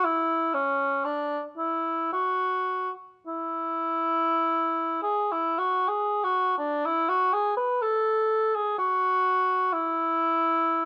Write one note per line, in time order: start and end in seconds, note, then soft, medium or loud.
0.04 0.55 E4 medium
0.54 1.06 C#4 medium
1.05 1.42 D4 medium
1.58 2.11 E4 medium
2.13 2.90 F#4 medium
3.27 4.98 E4 medium
5.02 5.33 G#4 medium
5.32 5.60 E4 medium
5.58 5.90 F#4 medium
5.88 6.25 G#4 medium
6.24 6.57 F#4 medium
6.58 6.87 D4 medium
6.86 7.10 E4 medium
7.09 7.35 F#4 medium
7.34 7.56 G#4 medium
7.57 7.83 B4 medium
7.82 8.56 A4 medium
8.55 8.78 G#4 medium
8.78 9.74 F#4 medium
9.73 10.85 E4 medium